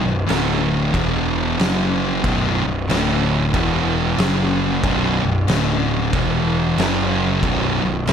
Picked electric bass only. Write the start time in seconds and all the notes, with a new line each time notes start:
0.03 B0
0.28 D1
0.94 E1
1.59 F#1
2.24 B0
2.64 B0
2.89 D1
3.54 E1
4.18 F#1
4.83 B0
5.22 B0
5.48 D1
6.13 E1
6.77 F#1
7.43 B0
7.82 B0
8.07 D1